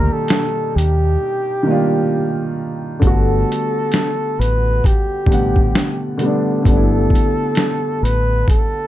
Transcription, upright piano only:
0, 0, Header, 1, 2, 480
1, 0, Start_track
1, 0, Key_signature, 1, "major"
1, 0, Tempo, 909091
1, 1595, Time_signature, 4, 2, 24, 8
1, 4683, End_track
2, 0, Start_track
2, 0, Title_t, "Upright piano"
2, 0, Program_c, 0, 0
2, 0, Control_c, 0, 64, 127
2, 0, Note_on_c, 0, 51, 78
2, 0, Note_on_c, 0, 55, 71
2, 0, Note_on_c, 0, 58, 70
2, 0, Note_on_c, 0, 62, 72
2, 0, Note_on_c, 0, 65, 73
2, 0, Note_on_c, 0, 67, 84
2, 572, Note_off_c, 0, 51, 0
2, 576, Note_off_c, 0, 55, 0
2, 581, Note_off_c, 0, 58, 0
2, 586, Note_off_c, 0, 62, 0
2, 591, Note_off_c, 0, 67, 0
2, 860, Note_on_c, 0, 51, 74
2, 869, Note_on_c, 0, 55, 68
2, 879, Note_on_c, 0, 58, 65
2, 889, Note_on_c, 0, 62, 64
2, 901, Note_off_c, 0, 65, 0
2, 901, Note_on_c, 0, 65, 83
2, 1546, Note_off_c, 0, 51, 0
2, 1550, Note_off_c, 0, 55, 0
2, 1556, Note_off_c, 0, 58, 0
2, 1561, Note_off_c, 0, 62, 0
2, 1566, Note_off_c, 0, 65, 0
2, 1581, Note_on_c, 0, 50, 72
2, 1590, Note_on_c, 0, 55, 66
2, 1601, Note_on_c, 0, 57, 65
2, 1602, Control_c, 0, 64, 0
2, 1611, Note_on_c, 0, 59, 66
2, 1620, Note_on_c, 0, 66, 81
2, 1695, Control_c, 0, 64, 127
2, 2493, Note_off_c, 0, 50, 0
2, 2498, Note_off_c, 0, 55, 0
2, 2503, Note_off_c, 0, 57, 0
2, 2508, Note_off_c, 0, 59, 0
2, 2512, Note_off_c, 0, 66, 0
2, 2777, Note_on_c, 0, 50, 65
2, 2787, Note_on_c, 0, 55, 59
2, 2798, Note_on_c, 0, 57, 56
2, 2807, Note_on_c, 0, 59, 61
2, 2818, Note_on_c, 0, 78, 70
2, 3238, Note_off_c, 0, 50, 0
2, 3243, Note_off_c, 0, 55, 0
2, 3249, Note_off_c, 0, 57, 0
2, 3253, Note_off_c, 0, 59, 0
2, 3259, Note_off_c, 0, 78, 0
2, 3259, Note_on_c, 0, 50, 73
2, 3270, Note_on_c, 0, 55, 67
2, 3279, Note_on_c, 0, 57, 69
2, 3289, Note_on_c, 0, 59, 66
2, 3300, Note_on_c, 0, 62, 77
2, 3489, Note_off_c, 0, 50, 0
2, 3497, Note_on_c, 0, 50, 72
2, 3499, Note_off_c, 0, 55, 0
2, 3503, Note_off_c, 0, 57, 0
2, 3508, Note_off_c, 0, 59, 0
2, 3508, Note_on_c, 0, 55, 61
2, 3514, Note_off_c, 0, 62, 0
2, 3517, Note_on_c, 0, 57, 63
2, 3527, Note_on_c, 0, 59, 65
2, 3538, Note_on_c, 0, 62, 66
2, 3567, Note_off_c, 0, 62, 0
2, 3572, Note_on_c, 0, 64, 78
2, 4411, Note_off_c, 0, 50, 0
2, 4417, Note_off_c, 0, 55, 0
2, 4421, Note_off_c, 0, 57, 0
2, 4426, Note_off_c, 0, 59, 0
2, 4448, Note_off_c, 0, 64, 0
2, 4683, End_track
0, 0, End_of_file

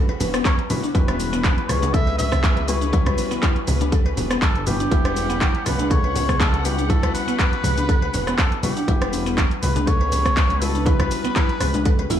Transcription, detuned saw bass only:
0, 0, Header, 1, 2, 480
1, 0, Start_track
1, 0, Tempo, 495868
1, 918, Time_signature, 4, 2, 24, 8
1, 11807, End_track
2, 0, Start_track
2, 0, Title_t, "Detuned saw bass"
2, 0, Program_c, 0, 39
2, 0, Note_on_c, 0, 37, 95
2, 158, Note_off_c, 0, 37, 0
2, 198, Note_on_c, 0, 28, 87
2, 389, Note_off_c, 0, 28, 0
2, 917, Note_on_c, 0, 28, 100
2, 1480, Note_off_c, 0, 28, 0
2, 1639, Note_on_c, 0, 37, 96
2, 3039, Note_off_c, 0, 37, 0
2, 3560, Note_on_c, 0, 37, 95
2, 3999, Note_off_c, 0, 37, 0
2, 4039, Note_on_c, 0, 28, 88
2, 4229, Note_off_c, 0, 28, 0
2, 4277, Note_on_c, 0, 31, 98
2, 4718, Note_off_c, 0, 31, 0
2, 4757, Note_on_c, 0, 28, 106
2, 5321, Note_off_c, 0, 28, 0
2, 5480, Note_on_c, 0, 37, 95
2, 6879, Note_off_c, 0, 37, 0
2, 7397, Note_on_c, 0, 37, 97
2, 7838, Note_off_c, 0, 37, 0
2, 7877, Note_on_c, 0, 28, 88
2, 8068, Note_off_c, 0, 28, 0
2, 8597, Note_on_c, 0, 28, 106
2, 9161, Note_off_c, 0, 28, 0
2, 9318, Note_on_c, 0, 37, 96
2, 10719, Note_off_c, 0, 37, 0
2, 11237, Note_on_c, 0, 37, 95
2, 11678, Note_off_c, 0, 37, 0
2, 11717, Note_on_c, 0, 28, 83
2, 11807, Note_off_c, 0, 28, 0
2, 11807, End_track
0, 0, End_of_file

